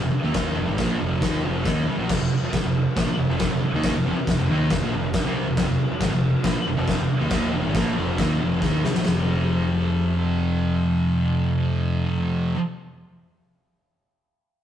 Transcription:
0.01 F1 F2 C3
0.12 muted distorted electric guitar stroke, muted fingered electric bass stroke
0.23 D#2 D#3 A#3
0.34 D#2 D#3 A#3 D#4, kick, snare, crash
0.55 F1 F2 C3
0.68 G#1 G#2 D#3
0.78 A#1 A#2 F3 A#3, kick, snare, crash
0.99 F1 F2 C3 F3
1.21 D#2 D#3 A#3 D#4, kick, snare, crash
1.43 F1 F2 C3 F3
1.65 D#2 D#3 A#3 D#4, kick, snare, crash
1.87 C2 C3 G3
1.98 A#1 A#2 F3
2.09 F1 F2 C3, kick, snare, crash
2.20 F1 F2 C3
2.31 muted distorted electric guitar stroke, muted fingered electric bass stroke
2.42 muted distorted electric guitar stroke, muted fingered electric bass stroke
2.53 G#1 G#2 D#3, kick, snare, crash
2.64 F1 F2 C3
2.96 A#1 A#2 F3, kick, snare, crash
3.07 muted distorted electric guitar stroke, muted fingered electric bass stroke
3.18 F1 F2 C3
3.29 F1 F2 C3 F3
3.39 kick, snare, crash
3.51 F1 F2 C3
3.62 muted fingered electric bass stroke, muted distorted electric guitar stroke
3.73 D#2 D#3 A#3 D#4
3.83 kick, snare, crash
3.94 F1 F2 C3
4.05 F1 F2 C3
4.16 muted fingered electric bass stroke, muted distorted electric guitar stroke
4.27 F1 F2 C3, kick, snare, crash
4.37 F1 F2 C3
4.49 D#2 D#3 A#3 D#4
4.70 F1 F2 C3, kick, snare, crash
4.81 A#1 A#2 F3
4.93 F1 F2 C3
5.13 kick, snare, crash
5.24 C2 C3 G3 C4
5.47 F1 F2 C3
5.57 F1 F2 C3, kick, snare, crash
5.68 F1 F2 C3
5.79 muted distorted electric guitar stroke, muted fingered electric bass stroke
5.90 muted distorted electric guitar stroke, muted fingered electric bass stroke
6.00 G#1 G#2 D#3, kick, snare, crash
6.12 F1 F2 C3
6.44 A#1 A#2 F3, kick, snare, crash
6.56 muted distorted electric guitar stroke, muted fingered electric bass stroke
6.67 F1 F2 C3
6.77 F1 F2 C3 F3
6.88 kick, snare, crash
6.98 F1 F2 C3
7.09 muted distorted electric guitar stroke, muted fingered electric bass stroke
7.19 D#2 D#3 A#3
7.30 D#2 D#3 A#3 D#4, kick, snare, crash
7.51 F1 F2 C3
7.63 G#1 G#2 D#3
7.73 A#1 A#2 F3 A#3, kick, snare, crash
7.96 F1 F2 C3 F3
8.18 D#2 D#3 A#3 D#4, kick, snare, crash
8.40 F1 F2 C3 F3
8.62 D#2 D#3 A#3 D#4, kick, snare
8.84 C2 C3 G3, snare
8.94 A#1 A#2 F3, snare
9.04 F1 F2 C3, snare
9.08 F3

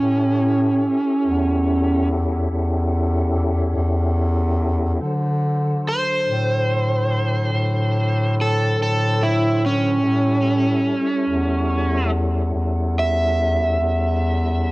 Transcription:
Already playing: C#4
0.00 A2 C#4 E4 G4 A4
1.26 E2
2.51 E2
3.76 E2
5.00 D3 F#3 A4 C5
5.89 C5
6.28 A2
7.53 A2
8.41 A4
8.78 A2
8.83 A4
9.23 E4
9.66 C#4
10.03 A2 G3 C#4 E4 A4
11.29 E2
12.54 E2
12.99 E5
13.79 E2

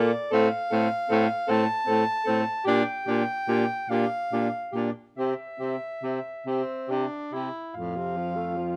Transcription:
Already playing: A#2 A#3 D5
0.31 A2 C4 A4 F5
0.71 A2 C4 A4
1.09 A2 C4 A4
1.47 A2 C4 A4 A5
1.86 A2 C4 A4
2.24 C4 A4
2.28 A2
2.65 A#2 D4 G4 G5
3.06 A#2 D4 G4
3.48 A#2 D4 G4
3.90 A#2 D4 G4 F5
4.32 A#2 D4 G4
4.72 A#2 D4 G4
5.17 C3 C4 G4 E5
5.60 C3 C4 G4
6.03 C3 C4 G4
6.46 C3 C4 G4
6.88 C3 D4 G4
7.32 C3 E4 G4
7.74 F2 A2 F4 F5
7.96 C3
8.17 F3
8.35 A3
8.56 F3

